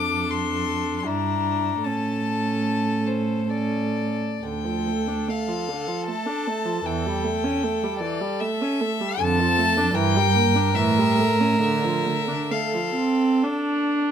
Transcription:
Already playing: F2 D4 A4 D6
0.30 C6
0.99 C6
1.05 G2 D4 E4 A#5
1.83 A2 C#4 A4 A5
3.07 C5
3.48 C#4 A4 D5
4.43 D2 D3 A4 G5
4.65 F3
4.88 A3
5.08 D4
5.28 A3 F5
5.48 F3
5.68 D3
5.88 F3
6.06 A3 A5
6.26 D4
6.47 A3
6.66 F3
6.85 E2 E3 G5
7.06 G3
7.24 A3
7.44 C#4
7.63 A3
7.84 G3
8.00 E3 D5
8.21 G3
8.40 A3 E5
8.61 C#4
8.81 A3
9.01 G3
9.20 F2 D3 A4 A5
9.40 F3
9.59 A3
9.77 D4
9.95 G2 E3 A#4 G5
10.17 G3
10.35 A#3
10.55 D4
10.75 A2 E3 E5
10.99 G3
11.19 A3
11.40 C#4
11.61 D3 E5
11.85 F3
12.06 A3
12.28 D4
12.51 A3 A4 F5
12.74 F3
12.95 C4
13.43 D4

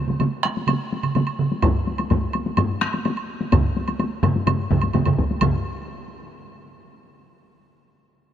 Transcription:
0.08 taiko mid, taiko high
0.20 taiko mid, taiko high, high woodblock
0.43 taiko rim, taiko high, high woodblock
0.57 taiko high
0.67 taiko mid, taiko high, high woodblock
0.93 taiko high
1.03 taiko mid, high woodblock
1.15 taiko mid, taiko high, high woodblock
1.27 high woodblock
1.39 taiko mid
1.52 taiko high
1.62 taiko, taiko low-mid, taiko high, high woodblock
1.87 taiko high
1.98 taiko high, high woodblock
2.10 taiko, taiko low-mid, taiko high, high woodblock
2.33 taiko high, high woodblock
2.46 taiko high
2.57 taiko low-mid, taiko high, high woodblock
2.81 taiko rim, taiko high
2.93 taiko high, high woodblock
3.05 taiko high, high woodblock
3.17 high woodblock
3.41 taiko high
3.52 taiko, taiko low-mid, taiko mid, taiko high, high woodblock
3.77 taiko high
3.88 taiko high, high woodblock
4.00 taiko high, high woodblock
4.23 taiko low-mid, taiko mid, taiko high, high woodblock
4.36 taiko high
4.47 taiko low-mid, taiko mid, taiko high, high woodblock
4.71 taiko, taiko low-mid, taiko mid, taiko high
4.82 taiko high, high woodblock
4.93 taiko low-mid, taiko mid, taiko high, high woodblock
5.05 taiko low-mid, taiko mid, high woodblock
5.19 taiko, taiko high
5.31 taiko high
5.41 taiko, taiko low-mid, taiko mid, taiko high, high woodblock

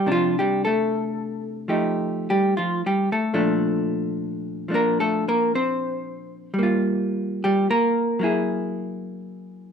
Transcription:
0.06 C3 D#3 D4
0.11 F3 F4
0.39 G3 G4
0.65 A3 A4
1.68 F3 A3 D#4 G4
2.30 G3 G4
2.57 F3 F4
2.86 G3 G4
3.12 A3 A4
3.34 A#2 F3 A3 D4
4.68 F3 A3 D4
4.74 A#3 A#4
5.00 A3 A4
5.28 A#3 A#4
5.55 C4 C5
6.54 G3
6.59 A#3
6.63 F4
7.44 G3 G4
7.70 A#3 A#4
8.19 F#3 A#3 E4
8.24 G#4

